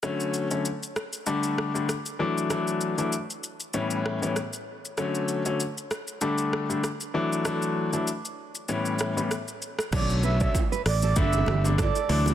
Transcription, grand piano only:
X:1
M:4/4
L:1/16
Q:"Swing 16ths" 1/4=97
K:D
V:1 name="Grand piano" clef=bass
[D,F,A,C]3 [D,F,A,C] z4 [D,G,A,D]3 [D,G,A,D] z2 [E,F,A,D]2 | [E,F,A,D]3 [E,F,A,D] z4 [A,,E,G,B,C]3 [A,,E,G,B,C] z4 | [D,F,A,C]3 [D,F,A,C] z4 [D,G,A,D]3 [D,G,A,D] z2 [E,F,A,D]2 | [E,F,A,D]3 [E,F,A,D] z4 [A,,E,G,B,C]3 [A,,E,G,B,C] z4 |
[D,F,A,C]3 [D,F,A,C] z4 [D,G,A,D]3 [D,G,A,D] z2 [E,F,A,D]2 |]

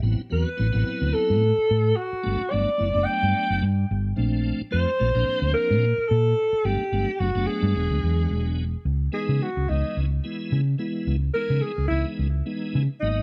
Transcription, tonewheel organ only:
X:1
M:4/4
L:1/16
Q:"Swing 16ths" 1/4=109
K:Ador
V:1 name="Tonewheel organ"
[F,B,CE] z [F,B,CF] z [F,B,CE] [F,B,CE]4- [F,B,CE] z6 | [F,A,B,D] z [F,A,B,D] z [F,A,B,E] [F,A,B,D]4- [F,A,B,D] z4 [=F,A,CD]2- | [=F,A,CD] z [F,A,C=F] z [F,A,CF] [F,_B,CD]4- [F,B,CD] z6 | [F,A,B,D] z [F,A,B,D] z [F,A,B,D] [F,A,B,D]3 [F,^G,B,D]6 z2 |
[K:C#dor] z2 [E,G,B,D]3 z [E,G,B,D]3 z [E,G,B,E]3 z [E,G,B,E]2- | [E,G,B,E] z [E,G,B,D]3 z [E,G,B,D]3 z [E,G,B,D]3 z [F,A,B,D]2 |]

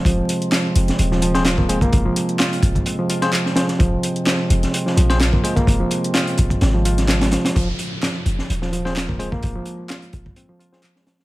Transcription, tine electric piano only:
X:1
M:4/4
L:1/16
Q:"Swing 16ths" 1/4=128
K:Cphr
V:1 name="Tine electric piano"
z8 z3 [CFAc] z2 [CFAc] z | z8 z3 [CFAc] z2 [CFAc] z | z8 z3 [CFAc] z2 [CFAc] z | z16 |
z8 z3 [CFAc] z2 [CFAc] z | z8 z3 [CFAc] z4 |]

